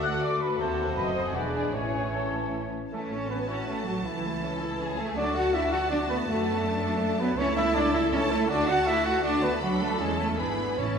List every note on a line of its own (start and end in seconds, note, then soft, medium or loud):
0.00 0.57 D2 medium
0.00 0.58 D2 medium
0.00 0.29 A3 medium
0.00 0.56 A3 medium
0.00 0.55 F#4 medium
0.00 1.06 F#4 medium
0.00 1.35 F#4 medium
0.00 0.58 A4 medium
0.00 0.30 D5 medium
0.00 0.22 F#5 medium
0.00 0.09 F#6 medium
0.21 0.41 D5 medium
0.21 0.41 D6 medium
0.40 0.59 B4 medium
0.40 0.59 B5 medium
0.59 0.94 D#2 soft
0.59 1.31 A3 soft
0.59 1.35 C4 soft
0.59 0.97 F#4 medium
0.59 1.31 F#4 soft
0.59 0.96 A4 medium
0.59 1.31 C5 soft
0.59 0.97 A5 medium
0.96 1.35 F#1 soft
0.96 1.35 F#2 soft
0.96 1.15 B4 medium
0.96 1.34 D#5 medium
0.96 1.02 B5 medium
1.15 1.25 C5 medium
1.15 1.20 C6 medium
1.25 1.35 G#4 soft
1.25 1.31 G#5 medium
1.34 1.74 E1 soft
1.34 1.74 E2 soft
1.34 1.77 G#3 soft
1.34 1.74 D4 soft
1.34 1.72 D4 soft
1.34 1.54 F#4 soft
1.34 1.74 G#4 soft
1.34 1.76 B4 soft
1.34 1.74 D5 soft
1.34 1.40 F#5 soft
1.54 1.72 G#4 soft
1.54 1.61 G#5 medium
1.73 2.72 A1 soft
1.73 2.71 A2 soft
1.73 2.74 E3 soft
1.73 2.13 C#4 soft
1.73 2.71 C#4 soft
1.73 2.72 C#4 soft
1.73 2.71 E4 soft
1.73 2.13 G#4 medium
1.73 2.73 C#5 soft
1.73 2.74 C#5 soft
1.73 2.13 G#5 medium
2.13 2.73 C#4 soft
2.13 2.53 A4 soft
2.13 2.53 A5 soft
2.92 4.02 A1 soft
2.92 3.11 E3 soft
2.92 3.01 A3 medium
2.92 3.11 A3 medium
2.92 3.29 C#4 soft
2.92 3.01 A4 medium
2.92 5.13 A5 soft
3.11 3.31 A3 soft
3.11 3.30 C#4 soft
3.11 3.31 C#4 soft
3.11 3.30 C#5 medium
3.30 3.49 B3 medium
3.30 3.50 C#4 soft
3.30 4.02 F#4 soft
3.30 3.39 B4 medium
3.48 3.57 C#4 medium
3.48 3.68 C#4 medium
3.48 3.68 E4 soft
3.48 3.58 C#5 medium
3.67 3.86 A3 medium
3.67 3.87 A3 medium
3.67 3.87 C#4 soft
3.67 3.89 A4 medium
3.86 3.95 F#3 medium
3.86 4.05 F#3 medium
3.86 4.06 A3 soft
3.86 4.07 F#4 medium
4.05 5.17 C#2 soft
4.05 4.98 E3 soft
4.05 4.96 E3 medium
4.05 4.23 E3 soft
4.05 4.98 E4 medium
4.05 4.44 E4 soft
4.26 4.44 A3 soft
4.44 4.62 C#4 soft
4.44 4.81 A4 medium
4.63 4.81 E4 soft
4.81 4.99 C#4 soft
4.81 5.18 G#4 medium
4.98 5.17 A3 medium
4.98 5.16 A3 medium
4.98 5.17 A3 medium
4.98 5.07 A4 medium
5.17 6.26 D2 medium
5.17 5.34 F#3 medium
5.17 5.35 A3 medium
5.17 5.35 D4 medium
5.17 5.25 D4 medium
5.17 6.26 F#4 medium
5.17 5.37 D5 medium
5.17 7.34 A5 medium
5.35 5.54 A3 medium
5.35 5.53 F#4 medium
5.35 5.54 F#4 medium
5.35 5.55 F#5 medium
5.54 5.72 D4 medium
5.54 5.62 E4 medium
5.54 5.73 E4 medium
5.54 5.74 E5 medium
5.72 5.91 F#4 soft
5.72 5.80 F#4 medium
5.72 5.91 F#4 medium
5.72 5.90 F#5 medium
5.91 5.98 D4 medium
5.91 6.10 D4 medium
5.91 6.00 D4 medium
5.91 5.99 D5 medium
6.09 6.28 A3 medium
6.09 6.27 B3 medium
6.09 6.28 B3 medium
6.09 6.18 B4 medium
6.28 7.36 F#2 medium
6.28 6.45 D3 medium
6.28 7.18 A3 medium
6.28 7.20 A3 medium
6.28 6.64 F#4 medium
6.28 7.18 A4 medium
6.46 6.65 F#3 medium
6.64 6.83 A3 medium
6.64 7.38 D4 medium
6.83 7.01 D4 medium
7.01 7.19 A3 medium
7.19 7.38 F#3 medium
7.19 7.28 B3 medium
7.19 7.39 B3 medium
7.19 7.40 B4 medium
7.38 8.46 C#2 medium
7.38 8.08 A3 medium
7.38 7.46 C#4 medium
7.38 7.57 C#4 medium
7.38 7.75 E4 medium
7.38 8.08 E4 medium
7.38 7.56 C#5 loud
7.38 8.09 A5 medium
7.57 7.64 E4 medium
7.57 7.76 E4 medium
7.57 7.77 E5 loud
7.75 7.83 D4 medium
7.75 7.95 D4 medium
7.75 8.50 A4 medium
7.75 7.93 D5 loud
7.94 8.02 E4 medium
7.94 8.13 E4 medium
7.94 8.02 E5 loud
8.12 8.49 A3 medium
8.12 8.20 C#4 medium
8.12 8.32 C#4 medium
8.12 8.49 E4 medium
8.12 8.33 C#5 medium
8.12 8.49 A5 medium
8.31 8.50 A3 medium
8.31 8.41 A3 medium
8.31 8.51 A4 medium
8.49 10.00 D2 medium
8.49 9.23 A3 medium
8.49 8.68 D4 medium
8.49 8.70 D4 medium
8.49 8.85 F#4 medium
8.49 9.22 F#4 medium
8.49 8.70 D5 loud
8.49 9.23 A5 medium
8.69 8.87 F#4 medium
8.69 8.77 F#4 medium
8.69 8.88 F#5 loud
8.86 9.06 E4 medium
8.86 9.05 E4 medium
8.86 9.60 F#4 medium
8.86 9.05 E5 loud
9.06 9.24 F#4 medium
9.06 9.24 F#5 medium
9.23 9.61 A3 medium
9.23 9.42 D4 medium
9.23 9.43 D4 medium
9.23 9.61 F#4 medium
9.23 9.44 D5 medium
9.23 9.62 A5 medium
9.43 9.51 B3 medium
9.43 9.62 B4 medium
9.61 9.81 F#3 medium
9.61 10.00 D4 medium
9.61 9.83 F#4 medium
9.61 9.99 F#4 medium
9.61 10.36 A4 medium
9.61 10.00 B5 medium
9.81 10.00 A3 medium
9.81 9.90 A3 medium
9.81 9.99 A4 medium
9.99 10.38 E2 medium
9.99 10.19 G#3 medium
9.99 10.38 C#4 medium
9.99 10.37 E4 medium
9.99 10.20 G#4 medium
9.99 10.39 A5 medium
10.19 10.27 A3 medium
10.19 10.39 A3 medium
10.19 10.38 A4 medium
10.38 10.78 G#1 medium
10.38 10.78 B3 medium
10.38 10.79 B3 medium
10.38 10.78 D4 soft
10.38 10.77 E4 soft
10.38 10.78 G#4 medium
10.38 10.80 B4 medium
10.38 10.78 B5 medium
10.78 10.99 A1 soft
10.78 10.86 A2 soft
10.78 10.99 C#4 medium
10.78 10.99 C#4 soft
10.78 10.99 C#4 medium
10.78 10.99 E4 soft
10.78 10.99 C#5 medium
10.78 10.99 A5 soft
10.87 10.94 A2 soft
10.95 10.99 A2 soft